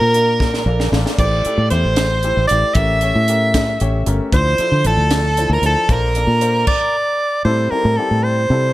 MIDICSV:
0, 0, Header, 1, 7, 480
1, 0, Start_track
1, 0, Tempo, 522648
1, 1094, Time_signature, 6, 3, 24, 8
1, 8019, End_track
2, 0, Start_track
2, 0, Title_t, "Soprano saxophone"
2, 0, Program_c, 0, 64
2, 0, Note_on_c, 0, 70, 100
2, 812, Note_off_c, 0, 70, 0
2, 1093, Note_on_c, 0, 74, 72
2, 1540, Note_off_c, 0, 74, 0
2, 1563, Note_on_c, 0, 72, 76
2, 2252, Note_off_c, 0, 72, 0
2, 2273, Note_on_c, 0, 74, 88
2, 2516, Note_on_c, 0, 76, 88
2, 2530, Note_off_c, 0, 74, 0
2, 3726, Note_off_c, 0, 76, 0
2, 3979, Note_on_c, 0, 72, 83
2, 4468, Note_on_c, 0, 69, 79
2, 4482, Note_off_c, 0, 72, 0
2, 5061, Note_off_c, 0, 69, 0
2, 5076, Note_on_c, 0, 70, 76
2, 5178, Note_off_c, 0, 70, 0
2, 5198, Note_on_c, 0, 69, 85
2, 5433, Note_on_c, 0, 70, 73
2, 5447, Note_off_c, 0, 69, 0
2, 6124, Note_off_c, 0, 70, 0
2, 6129, Note_on_c, 0, 74, 81
2, 6814, Note_off_c, 0, 74, 0
2, 6841, Note_on_c, 0, 72, 70
2, 7077, Note_on_c, 0, 70, 74
2, 7091, Note_off_c, 0, 72, 0
2, 7318, Note_on_c, 0, 69, 70
2, 7332, Note_off_c, 0, 70, 0
2, 7560, Note_on_c, 0, 72, 88
2, 7574, Note_off_c, 0, 69, 0
2, 8019, Note_off_c, 0, 72, 0
2, 8019, End_track
3, 0, Start_track
3, 0, Title_t, "Overdriven electric guitar"
3, 0, Program_c, 1, 29
3, 0, Note_on_c, 1, 70, 78
3, 826, Note_off_c, 1, 70, 0
3, 1097, Note_on_c, 1, 74, 61
3, 1542, Note_off_c, 1, 74, 0
3, 1572, Note_on_c, 1, 72, 65
3, 2257, Note_off_c, 1, 72, 0
3, 2285, Note_on_c, 1, 74, 72
3, 2529, Note_off_c, 1, 74, 0
3, 2529, Note_on_c, 1, 76, 72
3, 3732, Note_off_c, 1, 76, 0
3, 4007, Note_on_c, 1, 72, 80
3, 4438, Note_off_c, 1, 72, 0
3, 4474, Note_on_c, 1, 69, 73
3, 5065, Note_off_c, 1, 69, 0
3, 5091, Note_on_c, 1, 70, 68
3, 5186, Note_off_c, 1, 70, 0
3, 5207, Note_on_c, 1, 69, 65
3, 5442, Note_off_c, 1, 69, 0
3, 5442, Note_on_c, 1, 70, 62
3, 6388, Note_off_c, 1, 70, 0
3, 8019, End_track
4, 0, Start_track
4, 0, Title_t, "Grand piano"
4, 0, Program_c, 2, 0
4, 130, Note_on_c, 2, 70, 51
4, 130, Note_on_c, 2, 74, 61
4, 131, Note_on_c, 2, 58, 56
4, 131, Note_on_c, 2, 62, 49
4, 514, Note_off_c, 2, 58, 0
4, 514, Note_off_c, 2, 62, 0
4, 514, Note_off_c, 2, 70, 0
4, 514, Note_off_c, 2, 74, 0
4, 613, Note_on_c, 2, 58, 64
4, 614, Note_on_c, 2, 62, 59
4, 615, Note_on_c, 2, 69, 57
4, 616, Note_on_c, 2, 74, 72
4, 804, Note_off_c, 2, 58, 0
4, 805, Note_off_c, 2, 62, 0
4, 805, Note_off_c, 2, 69, 0
4, 806, Note_off_c, 2, 74, 0
4, 858, Note_on_c, 2, 58, 67
4, 860, Note_on_c, 2, 62, 61
4, 861, Note_on_c, 2, 69, 58
4, 862, Note_on_c, 2, 74, 72
4, 1094, Note_on_c, 2, 57, 63
4, 1095, Note_on_c, 2, 64, 55
4, 1095, Note_on_c, 2, 67, 56
4, 1096, Note_off_c, 2, 58, 0
4, 1097, Note_off_c, 2, 62, 0
4, 1097, Note_off_c, 2, 69, 0
4, 1097, Note_on_c, 2, 72, 67
4, 1098, Note_off_c, 2, 74, 0
4, 1286, Note_off_c, 2, 57, 0
4, 1287, Note_off_c, 2, 64, 0
4, 1287, Note_off_c, 2, 67, 0
4, 1288, Note_off_c, 2, 72, 0
4, 1338, Note_on_c, 2, 57, 59
4, 1341, Note_on_c, 2, 64, 47
4, 1342, Note_on_c, 2, 69, 60
4, 1343, Note_on_c, 2, 67, 54
4, 1527, Note_off_c, 2, 57, 0
4, 1529, Note_off_c, 2, 64, 0
4, 1529, Note_off_c, 2, 67, 0
4, 1529, Note_off_c, 2, 69, 0
4, 1580, Note_on_c, 2, 57, 56
4, 1580, Note_on_c, 2, 64, 52
4, 1583, Note_on_c, 2, 67, 50
4, 1583, Note_on_c, 2, 72, 62
4, 1959, Note_off_c, 2, 57, 0
4, 1959, Note_off_c, 2, 64, 0
4, 1960, Note_off_c, 2, 67, 0
4, 1961, Note_off_c, 2, 72, 0
4, 2056, Note_on_c, 2, 57, 54
4, 2057, Note_on_c, 2, 64, 50
4, 2058, Note_on_c, 2, 67, 54
4, 2062, Note_on_c, 2, 69, 60
4, 2246, Note_off_c, 2, 57, 0
4, 2247, Note_off_c, 2, 64, 0
4, 2247, Note_off_c, 2, 67, 0
4, 2250, Note_off_c, 2, 69, 0
4, 2303, Note_on_c, 2, 57, 51
4, 2305, Note_on_c, 2, 64, 53
4, 2305, Note_on_c, 2, 67, 51
4, 2308, Note_on_c, 2, 74, 65
4, 2520, Note_off_c, 2, 67, 0
4, 2521, Note_off_c, 2, 57, 0
4, 2534, Note_on_c, 2, 67, 57
4, 2535, Note_on_c, 2, 57, 66
4, 2536, Note_on_c, 2, 61, 61
4, 2536, Note_on_c, 2, 70, 69
4, 2540, Note_off_c, 2, 64, 0
4, 2541, Note_off_c, 2, 74, 0
4, 2727, Note_off_c, 2, 57, 0
4, 2727, Note_off_c, 2, 61, 0
4, 2727, Note_off_c, 2, 67, 0
4, 2728, Note_off_c, 2, 70, 0
4, 2779, Note_on_c, 2, 57, 56
4, 2781, Note_on_c, 2, 61, 54
4, 2781, Note_on_c, 2, 73, 64
4, 2785, Note_on_c, 2, 67, 51
4, 2968, Note_off_c, 2, 57, 0
4, 2969, Note_off_c, 2, 61, 0
4, 2969, Note_off_c, 2, 73, 0
4, 2971, Note_off_c, 2, 67, 0
4, 3017, Note_on_c, 2, 57, 58
4, 3020, Note_on_c, 2, 61, 53
4, 3022, Note_on_c, 2, 67, 51
4, 3024, Note_on_c, 2, 70, 66
4, 3398, Note_off_c, 2, 57, 0
4, 3400, Note_off_c, 2, 61, 0
4, 3400, Note_off_c, 2, 67, 0
4, 3401, Note_off_c, 2, 70, 0
4, 3501, Note_on_c, 2, 57, 70
4, 3501, Note_on_c, 2, 61, 61
4, 3502, Note_on_c, 2, 67, 60
4, 3502, Note_on_c, 2, 73, 70
4, 3689, Note_off_c, 2, 57, 0
4, 3689, Note_off_c, 2, 61, 0
4, 3690, Note_off_c, 2, 67, 0
4, 3690, Note_off_c, 2, 73, 0
4, 3732, Note_on_c, 2, 57, 72
4, 3734, Note_on_c, 2, 61, 62
4, 3735, Note_on_c, 2, 67, 57
4, 3736, Note_on_c, 2, 70, 69
4, 3974, Note_off_c, 2, 57, 0
4, 3975, Note_off_c, 2, 61, 0
4, 3975, Note_off_c, 2, 67, 0
4, 3976, Note_off_c, 2, 70, 0
4, 3976, Note_on_c, 2, 62, 58
4, 3978, Note_on_c, 2, 64, 61
4, 3978, Note_on_c, 2, 72, 72
4, 3979, Note_on_c, 2, 53, 66
4, 4168, Note_off_c, 2, 62, 0
4, 4169, Note_off_c, 2, 53, 0
4, 4169, Note_off_c, 2, 64, 0
4, 4169, Note_off_c, 2, 72, 0
4, 4217, Note_on_c, 2, 53, 56
4, 4219, Note_on_c, 2, 62, 54
4, 4219, Note_on_c, 2, 69, 64
4, 4222, Note_on_c, 2, 64, 51
4, 4407, Note_off_c, 2, 53, 0
4, 4408, Note_off_c, 2, 62, 0
4, 4408, Note_off_c, 2, 69, 0
4, 4409, Note_off_c, 2, 64, 0
4, 4460, Note_on_c, 2, 53, 60
4, 4463, Note_on_c, 2, 74, 66
4, 4464, Note_on_c, 2, 62, 51
4, 4465, Note_on_c, 2, 64, 53
4, 4839, Note_off_c, 2, 53, 0
4, 4841, Note_off_c, 2, 62, 0
4, 4841, Note_off_c, 2, 74, 0
4, 4842, Note_off_c, 2, 64, 0
4, 4937, Note_on_c, 2, 53, 58
4, 4938, Note_on_c, 2, 62, 54
4, 4940, Note_on_c, 2, 64, 55
4, 4941, Note_on_c, 2, 72, 66
4, 5127, Note_off_c, 2, 53, 0
4, 5127, Note_off_c, 2, 62, 0
4, 5128, Note_off_c, 2, 64, 0
4, 5129, Note_off_c, 2, 72, 0
4, 5173, Note_on_c, 2, 53, 53
4, 5177, Note_on_c, 2, 62, 49
4, 5177, Note_on_c, 2, 72, 67
4, 5179, Note_on_c, 2, 64, 52
4, 5406, Note_off_c, 2, 72, 0
4, 5407, Note_off_c, 2, 62, 0
4, 5414, Note_off_c, 2, 53, 0
4, 5417, Note_off_c, 2, 64, 0
4, 5419, Note_on_c, 2, 69, 59
4, 5419, Note_on_c, 2, 72, 71
4, 5420, Note_on_c, 2, 58, 62
4, 5421, Note_on_c, 2, 62, 57
4, 5609, Note_off_c, 2, 58, 0
4, 5609, Note_off_c, 2, 69, 0
4, 5609, Note_off_c, 2, 72, 0
4, 5610, Note_off_c, 2, 62, 0
4, 5657, Note_on_c, 2, 58, 58
4, 5659, Note_on_c, 2, 62, 52
4, 5660, Note_on_c, 2, 69, 54
4, 5661, Note_on_c, 2, 74, 63
4, 5847, Note_off_c, 2, 58, 0
4, 5847, Note_off_c, 2, 62, 0
4, 5848, Note_off_c, 2, 69, 0
4, 5849, Note_off_c, 2, 74, 0
4, 5888, Note_on_c, 2, 62, 51
4, 5890, Note_on_c, 2, 69, 50
4, 5890, Note_on_c, 2, 72, 62
4, 5891, Note_on_c, 2, 58, 61
4, 6131, Note_off_c, 2, 62, 0
4, 6132, Note_off_c, 2, 58, 0
4, 6132, Note_off_c, 2, 69, 0
4, 6132, Note_off_c, 2, 72, 0
4, 6855, Note_on_c, 2, 60, 62
4, 6856, Note_on_c, 2, 69, 68
4, 6857, Note_on_c, 2, 64, 62
4, 6859, Note_on_c, 2, 55, 64
4, 7046, Note_off_c, 2, 60, 0
4, 7047, Note_off_c, 2, 64, 0
4, 7047, Note_off_c, 2, 69, 0
4, 7048, Note_off_c, 2, 55, 0
4, 7089, Note_on_c, 2, 55, 56
4, 7090, Note_on_c, 2, 60, 52
4, 7091, Note_on_c, 2, 64, 55
4, 7092, Note_on_c, 2, 69, 62
4, 7282, Note_off_c, 2, 55, 0
4, 7282, Note_off_c, 2, 60, 0
4, 7283, Note_off_c, 2, 64, 0
4, 7283, Note_off_c, 2, 69, 0
4, 7334, Note_on_c, 2, 60, 58
4, 7336, Note_on_c, 2, 55, 59
4, 7336, Note_on_c, 2, 64, 58
4, 7338, Note_on_c, 2, 67, 65
4, 7714, Note_off_c, 2, 60, 0
4, 7715, Note_off_c, 2, 55, 0
4, 7715, Note_off_c, 2, 64, 0
4, 7716, Note_off_c, 2, 67, 0
4, 7813, Note_on_c, 2, 60, 53
4, 7814, Note_on_c, 2, 55, 57
4, 7816, Note_on_c, 2, 64, 53
4, 7818, Note_on_c, 2, 69, 69
4, 8003, Note_off_c, 2, 55, 0
4, 8003, Note_off_c, 2, 60, 0
4, 8004, Note_off_c, 2, 64, 0
4, 8005, Note_off_c, 2, 69, 0
4, 8019, End_track
5, 0, Start_track
5, 0, Title_t, "Fingered electric bass"
5, 0, Program_c, 3, 33
5, 9, Note_on_c, 3, 46, 72
5, 575, Note_off_c, 3, 46, 0
5, 605, Note_on_c, 3, 34, 78
5, 829, Note_off_c, 3, 34, 0
5, 844, Note_on_c, 3, 33, 83
5, 959, Note_off_c, 3, 33, 0
5, 1085, Note_on_c, 3, 33, 70
5, 1310, Note_off_c, 3, 33, 0
5, 1448, Note_on_c, 3, 45, 71
5, 1561, Note_off_c, 3, 45, 0
5, 1573, Note_on_c, 3, 40, 83
5, 1684, Note_off_c, 3, 40, 0
5, 1694, Note_on_c, 3, 33, 65
5, 2138, Note_off_c, 3, 33, 0
5, 2177, Note_on_c, 3, 33, 67
5, 2286, Note_off_c, 3, 33, 0
5, 2304, Note_on_c, 3, 33, 78
5, 2410, Note_off_c, 3, 33, 0
5, 2526, Note_on_c, 3, 33, 85
5, 2861, Note_off_c, 3, 33, 0
5, 2896, Note_on_c, 3, 45, 75
5, 3459, Note_off_c, 3, 45, 0
5, 3500, Note_on_c, 3, 33, 75
5, 3718, Note_off_c, 3, 33, 0
5, 3737, Note_on_c, 3, 31, 83
5, 3847, Note_off_c, 3, 31, 0
5, 3974, Note_on_c, 3, 38, 85
5, 4195, Note_off_c, 3, 38, 0
5, 4333, Note_on_c, 3, 50, 70
5, 4444, Note_off_c, 3, 50, 0
5, 4450, Note_on_c, 3, 33, 82
5, 4560, Note_off_c, 3, 33, 0
5, 4566, Note_on_c, 3, 38, 72
5, 5014, Note_off_c, 3, 38, 0
5, 5047, Note_on_c, 3, 38, 72
5, 5154, Note_off_c, 3, 38, 0
5, 5159, Note_on_c, 3, 38, 79
5, 5277, Note_off_c, 3, 38, 0
5, 5408, Note_on_c, 3, 34, 87
5, 5741, Note_off_c, 3, 34, 0
5, 5761, Note_on_c, 3, 46, 75
5, 6097, Note_off_c, 3, 46, 0
5, 6842, Note_on_c, 3, 45, 79
5, 7067, Note_off_c, 3, 45, 0
5, 7209, Note_on_c, 3, 45, 83
5, 7320, Note_off_c, 3, 45, 0
5, 7448, Note_on_c, 3, 45, 71
5, 7780, Note_off_c, 3, 45, 0
5, 7807, Note_on_c, 3, 48, 82
5, 8019, Note_off_c, 3, 48, 0
5, 8019, End_track
6, 0, Start_track
6, 0, Title_t, "Muted fingered electric bass strokes"
6, 4214, Note_on_c, 9, 29, 30
6, 4306, Note_off_c, 9, 29, 0
6, 7088, Note_on_c, 9, 29, 30
6, 7180, Note_off_c, 9, 29, 0
6, 8019, End_track
7, 0, Start_track
7, 0, Title_t, "Drums"
7, 132, Note_on_c, 9, 42, 53
7, 223, Note_off_c, 9, 42, 0
7, 369, Note_on_c, 9, 36, 70
7, 375, Note_on_c, 9, 38, 53
7, 461, Note_off_c, 9, 36, 0
7, 467, Note_off_c, 9, 38, 0
7, 493, Note_on_c, 9, 38, 45
7, 585, Note_off_c, 9, 38, 0
7, 734, Note_on_c, 9, 38, 58
7, 826, Note_off_c, 9, 38, 0
7, 853, Note_on_c, 9, 38, 70
7, 945, Note_off_c, 9, 38, 0
7, 975, Note_on_c, 9, 38, 66
7, 1067, Note_off_c, 9, 38, 0
7, 1089, Note_on_c, 9, 36, 89
7, 1091, Note_on_c, 9, 42, 60
7, 1091, Note_on_c, 9, 49, 63
7, 1181, Note_off_c, 9, 36, 0
7, 1183, Note_off_c, 9, 42, 0
7, 1183, Note_off_c, 9, 49, 0
7, 1329, Note_on_c, 9, 42, 49
7, 1421, Note_off_c, 9, 42, 0
7, 1565, Note_on_c, 9, 42, 52
7, 1657, Note_off_c, 9, 42, 0
7, 1804, Note_on_c, 9, 42, 77
7, 1809, Note_on_c, 9, 38, 93
7, 1896, Note_off_c, 9, 42, 0
7, 1900, Note_off_c, 9, 38, 0
7, 2046, Note_on_c, 9, 42, 50
7, 2137, Note_off_c, 9, 42, 0
7, 2287, Note_on_c, 9, 42, 55
7, 2379, Note_off_c, 9, 42, 0
7, 2523, Note_on_c, 9, 42, 71
7, 2529, Note_on_c, 9, 36, 95
7, 2615, Note_off_c, 9, 42, 0
7, 2621, Note_off_c, 9, 36, 0
7, 2764, Note_on_c, 9, 42, 54
7, 2856, Note_off_c, 9, 42, 0
7, 3012, Note_on_c, 9, 42, 61
7, 3103, Note_off_c, 9, 42, 0
7, 3253, Note_on_c, 9, 36, 74
7, 3253, Note_on_c, 9, 42, 80
7, 3257, Note_on_c, 9, 38, 102
7, 3344, Note_off_c, 9, 42, 0
7, 3345, Note_off_c, 9, 36, 0
7, 3349, Note_off_c, 9, 38, 0
7, 3491, Note_on_c, 9, 42, 52
7, 3583, Note_off_c, 9, 42, 0
7, 3732, Note_on_c, 9, 42, 53
7, 3824, Note_off_c, 9, 42, 0
7, 3972, Note_on_c, 9, 36, 82
7, 3972, Note_on_c, 9, 42, 69
7, 4064, Note_off_c, 9, 36, 0
7, 4064, Note_off_c, 9, 42, 0
7, 4209, Note_on_c, 9, 42, 52
7, 4301, Note_off_c, 9, 42, 0
7, 4450, Note_on_c, 9, 42, 50
7, 4541, Note_off_c, 9, 42, 0
7, 4689, Note_on_c, 9, 42, 76
7, 4694, Note_on_c, 9, 38, 101
7, 4781, Note_off_c, 9, 42, 0
7, 4786, Note_off_c, 9, 38, 0
7, 4934, Note_on_c, 9, 42, 50
7, 5025, Note_off_c, 9, 42, 0
7, 5170, Note_on_c, 9, 42, 47
7, 5261, Note_off_c, 9, 42, 0
7, 5410, Note_on_c, 9, 36, 92
7, 5410, Note_on_c, 9, 42, 62
7, 5501, Note_off_c, 9, 42, 0
7, 5502, Note_off_c, 9, 36, 0
7, 5648, Note_on_c, 9, 42, 48
7, 5740, Note_off_c, 9, 42, 0
7, 5889, Note_on_c, 9, 42, 55
7, 5981, Note_off_c, 9, 42, 0
7, 6125, Note_on_c, 9, 57, 75
7, 6128, Note_on_c, 9, 36, 92
7, 6217, Note_off_c, 9, 57, 0
7, 6220, Note_off_c, 9, 36, 0
7, 8019, End_track
0, 0, End_of_file